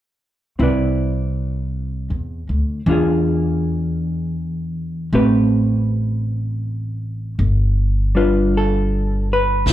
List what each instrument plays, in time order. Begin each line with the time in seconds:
0.59 upright bass C2, hollow-body jazz guitar C4 E4 B4
0.63 hollow-body jazz guitar D5
2.10 upright bass E2
2.49 upright bass D2
2.86 upright bass E2, hollow-body jazz guitar E3 D4 F4
2.91 hollow-body jazz guitar G#4
5.13 upright bass A1, hollow-body jazz guitar A3 C4 G4 B4
7.39 upright bass G1
8.15 hollow-body jazz guitar G3 D4 F4 B4
8.57 hollow-body jazz guitar A4
9.33 hollow-body jazz guitar B4
9.66 upright bass C2, hollow-body jazz guitar E4, brush sweep, snare